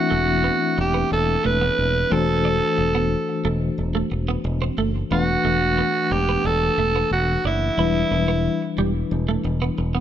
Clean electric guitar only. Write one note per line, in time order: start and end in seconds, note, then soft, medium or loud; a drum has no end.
0.11 0.23 A3 medium
0.28 muted clean electric guitar stroke soft
0.44 0.57 B3 medium
0.78 muted clean electric guitar stroke soft
0.94 1.07 B3 medium
1.11 muted clean electric guitar stroke soft
1.44 1.57 A3 medium
1.61 1.74 B3 medium
2.12 2.24 C4 medium
2.45 2.57 D4 medium
2.78 muted clean electric guitar stroke soft
2.95 3.07 B3 medium
3.45 3.57 A3 medium
3.95 4.07 A3 medium
4.12 muted clean electric guitar stroke soft
4.28 4.41 B3 medium
4.45 muted clean electric guitar stroke soft
4.62 4.74 C4 medium
4.78 4.91 A3 medium
5.12 5.24 B3 medium
5.45 5.57 A3 medium
5.62 muted clean electric guitar stroke soft
5.78 5.91 B3 medium
6.12 muted clean electric guitar stroke soft
6.29 6.41 B3 medium
6.45 muted clean electric guitar stroke soft
6.79 6.91 A3 medium
6.96 7.08 B3 medium
7.45 7.58 D4 medium
7.79 7.91 E4 medium
8.12 muted clean electric guitar stroke soft
8.28 8.41 B3 medium
8.78 8.91 G3 medium
9.29 9.41 A3 medium
9.45 muted clean electric guitar stroke soft
9.62 9.74 B3 medium
9.78 muted clean electric guitar stroke soft
9.95 10.00 B3 medium